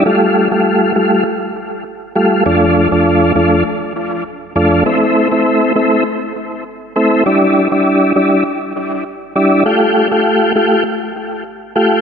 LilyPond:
\new Staff \with { instrumentName = "Tonewheel organ" } { \time 4/4 \key e \phrygian \tempo 4 = 100 <g a f'>8. <g a f'>8. <g a f'>8 r4. <g a f'>8 | <f, a d' f'>8. <f, a d' f'>8. <f, a d' f'>8 r4. <f, a d' f'>8 | <a c' e'>8. <a c' e'>8. <a c' e'>8 r4. <a c' e'>8 | <g d' e'>8. <g d' e'>8. <g d' e'>8 r4. <g d' e'>8 |
<a f' g'>8. <a f' g'>8. <a f' g'>8 r4. <a f' g'>8 | }